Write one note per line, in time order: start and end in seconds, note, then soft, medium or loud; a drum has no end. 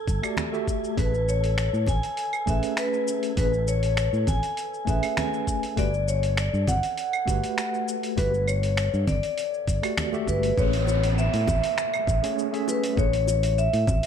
0.00 10.59 A4 medium
0.00 10.59 G#6 medium
0.07 0.20 G1 medium
0.07 kick loud
0.07 cabasa medium
0.22 0.49 A3 medium
0.22 0.49 F#4 medium
0.22 0.50 G4 medium
0.22 0.50 D5 medium
0.22 finger snap soft
0.22 cabasa soft
0.22 claves medium
0.37 finger snap medium
0.37 low conga medium
0.37 cabasa soft
0.52 0.94 A3 medium
0.52 0.94 F#4 medium
0.52 0.94 G4 medium
0.52 0.95 E5 loud
0.52 cabasa soft
0.68 kick medium
0.68 cabasa medium
0.84 cabasa soft
0.97 1.68 A1 medium
0.97 1.11 A3 medium
0.97 1.11 C#4 medium
0.97 1.12 G#4 medium
0.97 1.12 B4 medium
0.97 1.29 B4 medium
0.97 kick loud
0.97 open hi-hat soft
0.97 cabasa soft
1.14 cabasa soft
1.29 1.90 C#5 medium
1.29 cabasa medium
1.44 open hi-hat soft
1.44 cabasa soft
1.58 finger snap medium
1.58 open hi-hat soft
1.58 cabasa soft
1.73 1.84 A2 medium
1.73 cabasa soft
1.86 2.00 A1 medium
1.86 2.50 G#5 loud
1.86 kick loud
1.86 open hi-hat soft
1.86 low conga medium
1.86 cabasa medium
2.03 open hi-hat soft
2.03 cabasa soft
2.17 open hi-hat medium
2.17 cabasa soft
2.33 cabasa soft
2.33 claves medium
2.46 2.60 A1 medium
2.46 3.33 A3 medium
2.46 3.34 C#4 medium
2.46 3.34 G#4 medium
2.46 3.35 B4 medium
2.46 2.76 E5 medium
2.46 kick loud
2.46 open hi-hat soft
2.46 cabasa medium
2.63 open hi-hat soft
2.63 cabasa soft
2.77 3.21 B4 medium
2.77 finger snap medium
2.77 open hi-hat medium
2.77 cabasa soft
2.94 cabasa soft
3.08 cabasa medium
3.23 open hi-hat soft
3.23 cabasa soft
3.36 4.08 A1 medium
3.36 3.51 A3 medium
3.36 3.51 C#4 medium
3.36 3.51 G#4 medium
3.36 3.52 B4 medium
3.36 3.69 B4 medium
3.36 kick loud
3.36 open hi-hat medium
3.36 cabasa soft
3.54 cabasa soft
3.68 4.24 C#5 medium
3.68 cabasa medium
3.83 open hi-hat soft
3.83 cabasa soft
3.97 finger snap medium
3.97 open hi-hat medium
3.97 cabasa soft
4.13 4.24 A2 medium
4.13 cabasa soft
4.27 4.40 A1 medium
4.27 4.90 G#5 loud
4.27 kick loud
4.27 open hi-hat soft
4.27 low conga medium
4.27 cabasa medium
4.43 open hi-hat soft
4.43 cabasa soft
4.57 open hi-hat medium
4.57 cabasa soft
4.74 cabasa soft
4.85 5.00 A1 medium
4.85 5.73 A3 medium
4.85 5.74 C#4 medium
4.85 5.74 G#4 medium
4.85 5.19 E5 medium
4.85 kick medium
4.85 open hi-hat soft
4.85 cabasa medium
4.89 5.75 B4 loud
5.03 open hi-hat soft
5.03 cabasa soft
5.03 claves medium
5.17 5.60 G#5 loud
5.17 finger snap medium
5.17 open hi-hat medium
5.17 low conga medium
5.17 cabasa soft
5.34 cabasa soft
5.47 kick medium
5.47 cabasa medium
5.63 open hi-hat soft
5.63 cabasa soft
5.77 6.48 G1 medium
5.77 5.91 A3 medium
5.77 5.91 F#4 medium
5.77 5.92 G4 medium
5.77 5.92 B4 medium
5.77 6.06 D5 loud
5.77 kick loud
5.77 open hi-hat medium
5.77 cabasa soft
5.94 cabasa soft
6.08 6.36 C#5 medium
6.08 cabasa medium
6.23 open hi-hat soft
6.23 cabasa soft
6.37 6.69 D5 medium
6.37 finger snap medium
6.37 open hi-hat medium
6.37 cabasa soft
6.53 6.65 G2 medium
6.53 cabasa soft
6.67 6.80 G1 medium
6.67 7.84 F#5 medium
6.67 kick loud
6.67 open hi-hat soft
6.67 low conga medium
6.67 cabasa medium
6.83 open hi-hat soft
6.83 cabasa soft
6.98 open hi-hat medium
6.98 cabasa soft
7.13 cabasa soft
7.13 claves medium
7.26 7.40 G1 medium
7.26 8.13 A3 medium
7.26 8.14 F#4 medium
7.26 8.14 G4 medium
7.26 kick medium
7.26 open hi-hat soft
7.26 cabasa medium
7.30 8.15 B4 loud
7.44 open hi-hat soft
7.44 cabasa soft
7.58 finger snap medium
7.58 open hi-hat medium
7.58 cabasa soft
7.74 cabasa soft
7.88 cabasa medium
8.03 open hi-hat soft
8.03 cabasa soft
8.16 8.88 G1 medium
8.16 8.31 A3 medium
8.16 8.31 F#4 medium
8.16 8.32 G4 medium
8.16 8.49 B4 medium
8.16 8.32 B4 loud
8.16 kick loud
8.16 open hi-hat medium
8.16 high conga medium
8.16 cabasa soft
8.34 cabasa soft
8.48 9.04 C#5 medium
8.48 cabasa medium
8.48 claves medium
8.63 open hi-hat soft
8.63 cabasa soft
8.77 finger snap medium
8.77 open hi-hat medium
8.77 cabasa soft
8.94 9.05 G2 medium
8.94 cabasa soft
9.07 9.20 G1 medium
9.07 9.94 D5 loud
9.07 kick loud
9.07 open hi-hat soft
9.07 low conga medium
9.07 cabasa medium
9.23 open hi-hat soft
9.23 cabasa soft
9.38 open hi-hat medium
9.38 cabasa soft
9.54 cabasa soft
9.67 9.80 G1 medium
9.67 kick loud
9.67 open hi-hat soft
9.67 cabasa medium
9.82 10.09 A3 medium
9.82 10.09 F#4 medium
9.82 10.10 G4 medium
9.82 10.10 D5 loud
9.82 finger snap soft
9.82 open hi-hat soft
9.82 cabasa soft
9.82 claves medium
9.97 finger snap loud
9.97 open hi-hat medium
9.97 low conga medium
9.97 cabasa soft
10.13 10.54 A3 medium
10.13 10.54 F#4 medium
10.13 10.54 G4 medium
10.13 10.55 E5 loud
10.13 high conga soft
10.13 cabasa soft
10.28 10.51 G1 loud
10.28 10.59 B4 medium
10.28 kick medium
10.28 cabasa medium
10.43 open hi-hat soft
10.43 cabasa soft
10.57 11.28 A1 loud
10.57 10.71 A3 medium
10.57 10.71 C#4 medium
10.57 10.72 G#4 medium
10.57 10.72 B4 loud
10.57 10.88 C#5 loud
10.57 kick loud
10.57 downlifter medium
10.57 cabasa soft
10.73 open hi-hat soft
10.73 cabasa soft
10.87 11.02 C#5 medium
10.87 high bongo medium
10.87 cabasa medium
11.03 open hi-hat medium
11.03 cabasa soft
11.18 11.47 E5 loud
11.18 cabasa soft
11.34 11.45 A2 medium
11.34 open hi-hat soft
11.34 cabasa soft
11.48 11.60 A1 medium
11.48 12.34 E5 loud
11.48 kick loud
11.48 high bongo medium
11.48 low conga medium
11.48 cabasa medium
11.64 open hi-hat medium
11.64 cabasa soft
11.78 finger snap medium
11.78 cabasa soft
11.94 cabasa soft
11.94 claves medium
12.07 12.20 A1 medium
12.07 kick loud
12.07 cabasa medium
12.22 12.49 A3 medium
12.22 12.49 C#4 medium
12.22 12.50 G#4 medium
12.22 12.50 C#5 loud
12.22 open hi-hat medium
12.22 cabasa soft
12.39 cabasa soft
12.52 12.93 A3 loud
12.52 12.94 C#4 medium
12.52 12.94 G#4 medium
12.52 12.94 E5 loud
12.52 open hi-hat soft
12.52 cabasa soft
12.68 12.96 B4 medium
12.68 high bongo medium
12.68 cabasa medium
12.84 open hi-hat medium
12.84 cabasa soft
12.97 13.68 A1 medium
12.97 13.11 A3 medium
12.97 13.11 C#4 medium
12.97 13.12 G#4 medium
12.97 13.12 B4 medium
12.97 13.27 C#5 loud
12.97 kick loud
12.97 cabasa soft
13.13 open hi-hat soft
13.13 cabasa soft
13.27 13.59 C#5 medium
13.27 high bongo soft
13.27 cabasa medium
13.43 open hi-hat medium
13.43 cabasa soft
13.58 13.87 E5 loud
13.58 cabasa soft
13.73 13.84 A2 medium
13.73 open hi-hat soft
13.73 cabasa soft
13.87 14.00 A1 medium
13.87 14.06 E5 loud
13.87 kick loud
13.87 low conga medium
13.87 cabasa medium
14.03 open hi-hat medium